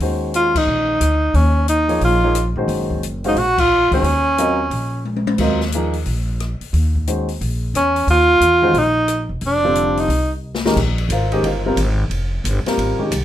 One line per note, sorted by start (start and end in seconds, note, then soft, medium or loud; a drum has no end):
0.00 0.64 D#2 medium
0.00 0.94 D#3 medium
0.00 0.95 G#3 medium
0.00 0.94 C#4 medium
0.00 0.94 F#4 medium
0.00 0.95 C5 medium
0.00 open hi-hat soft
0.34 0.59 F4 loud
0.34 closed hi-hat medium
0.55 1.37 D#4 loud
0.55 kick medium
0.55 crash medium
0.67 0.98 A#1 medium
1.01 1.32 D2 medium
1.01 cross-stick medium
1.01 closed hi-hat medium
1.34 1.98 D#2 medium
1.34 1.68 C#4 medium
1.34 open hi-hat soft
1.68 2.00 D#4 medium
1.68 closed hi-hat medium
1.88 2.21 F3 medium
1.88 2.21 A#3 medium
1.88 2.21 D#4 medium
1.88 2.21 G#4 medium
1.88 2.21 C#5 medium
1.88 open hi-hat soft
2.01 2.52 A#1 medium
2.01 2.55 F4 medium
2.01 open hi-hat soft
2.24 2.35 F3 medium
2.24 2.35 A#3 medium
2.24 2.35 D#4 medium
2.24 2.35 G#4 medium
2.24 2.35 C#5 medium
2.35 cross-stick medium
2.35 closed hi-hat medium
2.56 2.67 A#2 medium
2.56 3.00 D#3 medium
2.56 3.01 G#3 medium
2.56 3.01 C#4 medium
2.56 3.01 F#4 medium
2.56 3.01 C5 medium
2.68 3.33 F#1 medium
2.68 open hi-hat soft
2.90 kick medium
3.03 closed hi-hat medium
3.24 3.36 G#3 medium
3.24 3.36 C#4 medium
3.24 3.39 D#4 medium
3.24 3.36 F#4 medium
3.24 3.36 C5 medium
3.24 3.36 F5 medium
3.24 open hi-hat soft
3.35 3.87 A#1 medium
3.35 3.61 F#4 loud
3.35 open hi-hat soft
3.58 3.93 F4 loud
3.58 kick medium
3.58 crash medium
3.91 4.02 C#2 medium
3.91 4.03 D#3 medium
3.91 4.03 G#3 medium
3.91 4.03 C#4 medium
3.91 5.24 C#4 medium
3.91 4.03 F#4 medium
3.91 4.04 C5 medium
3.91 kick medium
3.91 open hi-hat soft
4.02 4.67 D#2 medium
4.02 open hi-hat soft
4.38 4.57 F#3 medium
4.38 4.57 C4 medium
4.38 4.57 F4 medium
4.38 4.58 A#4 medium
4.38 4.58 D#5 medium
4.38 closed hi-hat medium
4.71 5.35 A#1 medium
4.71 open hi-hat soft
5.05 high tom soft
5.16 high tom medium
5.27 high tom medium
5.38 6.02 D#2 medium
5.38 5.59 F#3 medium
5.38 5.59 C4 medium
5.38 5.59 F4 medium
5.38 5.59 A#4 medium
5.38 5.59 D#5 medium
5.38 kick medium
5.38 crash medium
5.61 snare soft
5.72 5.93 F3 medium
5.72 5.93 A#3 medium
5.72 5.93 D#4 medium
5.72 5.93 G#4 medium
5.72 5.93 A#4 medium
5.72 closed hi-hat medium
5.93 open hi-hat soft
6.06 6.57 A#1 medium
6.06 open hi-hat soft
6.40 cross-stick medium
6.40 closed hi-hat medium
6.61 muted upright bass stroke soft
6.61 open hi-hat soft
6.73 7.37 D#2 medium
6.73 open hi-hat soft
6.95 kick soft
7.07 7.26 D#3 medium
7.07 7.26 G#3 medium
7.07 7.26 C#4 medium
7.07 7.27 F#4 soft
7.07 7.27 C5 medium
7.07 closed hi-hat medium
7.28 open hi-hat soft
7.41 7.72 A#1 medium
7.41 open hi-hat medium
7.74 8.05 E2 medium
7.74 8.07 C#4 medium
7.74 cross-stick medium
7.74 closed hi-hat medium
7.96 open hi-hat soft
8.07 8.39 D#2 medium
8.07 8.80 F4 loud
8.07 open hi-hat soft
8.41 8.72 E2 medium
8.41 closed hi-hat medium
8.62 8.73 D#3 medium
8.62 8.73 G#3 medium
8.62 8.74 C#4 medium
8.62 8.74 F#4 medium
8.62 8.74 C5 medium
8.74 9.25 A#1 medium
8.74 open hi-hat soft
8.78 9.31 D#4 loud
9.08 cross-stick medium
9.08 closed hi-hat medium
9.29 9.41 E1 medium
9.41 10.06 F1 medium
9.41 open hi-hat soft
9.46 10.02 D4 medium
9.64 10.07 D3 medium
9.64 10.07 G3 medium
9.64 10.07 C4 medium
9.64 10.07 F4 medium
9.64 10.07 A4 medium
9.75 closed hi-hat medium
9.97 10.32 D#4 medium
9.97 open hi-hat soft
10.08 10.72 C2 medium
10.08 open hi-hat medium
10.55 snare medium
10.65 10.76 D#3 medium
10.65 10.76 G#3 medium
10.65 10.76 C#4 medium
10.65 10.76 G4 medium
10.65 10.76 A#4 medium
10.65 snare medium
10.76 11.08 A#1 medium
10.76 kick medium
10.76 crash medium
10.98 ride soft
11.09 11.42 G#1 medium
11.09 11.32 F4 medium
11.09 11.31 A#4 medium
11.09 11.32 C5 medium
11.09 11.32 F5 medium
11.09 hi-hat pedal medium
11.09 ride medium
11.32 11.43 D#3 medium
11.32 11.43 G#3 medium
11.32 11.43 C#4 medium
11.32 11.44 D#4 medium
11.32 11.43 G4 medium
11.32 11.44 A#4 medium
11.32 11.44 C5 medium
11.32 11.44 D#5 medium
11.32 ride soft
11.42 11.75 G1 medium
11.42 11.65 F4 medium
11.42 11.65 A#4 medium
11.42 11.65 C5 medium
11.42 11.65 F5 medium
11.42 ride medium
11.66 11.76 G3 medium
11.66 11.77 C4 medium
11.66 11.77 F4 medium
11.66 11.77 A#4 medium
11.76 12.09 G#1 medium
11.76 hi-hat pedal medium
11.76 ride medium
12.10 12.43 F1 medium
12.10 ride medium
12.44 12.64 G1 medium
12.44 hi-hat pedal soft
12.44 ride medium
12.65 12.98 G3 medium
12.65 12.98 C4 medium
12.65 12.98 F4 medium
12.65 12.98 A#4 medium
12.65 muted upright bass stroke soft
12.65 snare medium
12.65 ride soft
12.78 12.97 G#1 medium
12.78 ride medium
12.99 13.10 D#3 medium
12.99 13.10 G#3 medium
12.99 13.10 C#4 medium
12.99 13.10 G4 medium
12.99 muted upright bass stroke soft
13.11 13.25 C2 medium
13.11 hi-hat pedal medium
13.11 ride medium